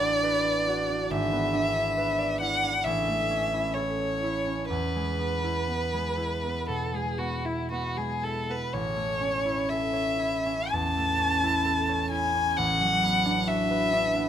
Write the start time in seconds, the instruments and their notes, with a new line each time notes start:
Already playing: harp A1 B3 D4 A4 B4 D5, violin D5
0.01 harp F#4
0.23 harp B4
0.45 harp D5
0.67 harp F#4
0.89 harp D4
1.11 harp G#1, violin E5
1.33 harp B3
1.54 harp D4
1.75 harp E4
1.97 harp B4
2.18 harp D5
2.41 harp E4, violin F#5
2.63 harp D4
2.84 harp A1, violin E5
3.08 harp A3
3.30 harp C#4
3.53 harp E4
3.74 harp A4, violin C#5
4.00 harp C#5
4.23 harp E4
4.46 harp C#4
4.70 harp E2, violin B4
4.96 harp G#3
5.19 harp B3
5.44 harp E4
5.68 harp B3
5.94 harp G#3
6.17 harp E4
6.44 harp B3
6.69 harp B2, violin A4
6.94 harp G#3, violin G#4
7.18 harp B3, violin F#4
7.45 violin E4, harp E4
7.71 harp B3, violin F#4
7.97 harp G#3, violin G#4
8.23 harp E4, violin A4
8.49 harp B3, violin B4
8.74 harp A1, violin C#5
8.96 harp A3
9.21 harp C#4
9.45 harp E4
9.69 harp A4, violin E5
9.93 harp C#5
10.19 harp E4
10.46 harp C#4
10.71 harp E2, violin A5
10.97 harp A3
11.20 harp C#4
11.43 harp E4
11.65 harp A4
11.89 harp C#5
12.10 harp E4, violin G#5
12.35 harp C#4
12.56 harp A1, violin F#5
12.80 harp F#3
13.03 harp B3
13.26 harp D4
13.47 harp F#4, violin E5
13.71 harp B4
13.93 harp D4
14.16 harp B3